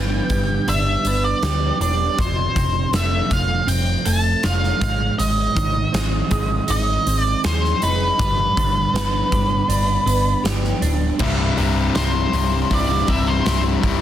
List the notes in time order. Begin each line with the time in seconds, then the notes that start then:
Already playing: G1 G2 D3 B3 G5
0.30 G1 G3, kick, closed hi-hat
0.68 G1 D4 E5, closed hi-hat
1.05 G1 B3, closed hi-hat
1.24 D5
1.43 D2 G4, snare, closed hi-hat
1.80 E1 D4 D5, closed hi-hat
2.18 F1 F2 C5, kick, closed hi-hat
2.55 F1 C3, kick, closed hi-hat
2.92 F1 A3 E5, snare, closed hi-hat
3.30 F1 F3 F5, kick, closed hi-hat
3.67 F1 C4 G5, closed hi-hat
4.05 F1 A3 A5, closed hi-hat
4.43 F1 F4 F5, snare, closed hi-hat
4.64 snare
4.81 G#1 G#2, kick, closed hi-hat
5.18 G#1 G#2 D#5, closed hi-hat
5.54 G#1 D#3, kick, closed hi-hat
5.92 G#1 C4, snare, closed hi-hat
6.30 G#1 G#3, kick, closed hi-hat
6.68 G#1 D#4 D#5, closed hi-hat
7.06 G#1 C4, closed hi-hat
7.20 D5
7.44 D#2 G#4 C5, snare, closed hi-hat
7.64 snare
7.82 F1 D#4 B4, closed hi-hat
8.19 G1 G2, kick, closed hi-hat
8.57 G1 D3, kick, closed hi-hat
8.94 G1 B3, snare, closed hi-hat
9.32 G1 G3, kick, closed hi-hat
9.68 G1 D4, closed hi-hat
10.06 G1 B3, closed hi-hat
10.44 G1 G4, snare, closed hi-hat
10.64 snare
10.82 D1 D4, closed hi-hat
11.18 C1 C2 G2 C3 G3 E4, kick, crash
11.54 C1 C2 G2 C3 G3 E4, open hi-hat
11.93 C1 C2 G2 C3 G3 E4 C5, snare, open hi-hat
12.13 C3 G3 E4
12.32 C1 C2 G2 C3, muted clean electric guitar stroke, open hi-hat
12.50 C3 G3 E4
12.70 C1 C2 G2 C3 G3 E4, kick, open hi-hat
12.74 D5
12.88 C3 G3 E4
13.06 C1 C2 G2 C3 G3 E4 E5, kick, open hi-hat
13.27 C5
13.44 C1 C2 G2 C3 G3 E4, snare, open hi-hat
13.63 G3 E4
13.67 C3
13.83 C1 C2 G2 C3, kick, open hi-hat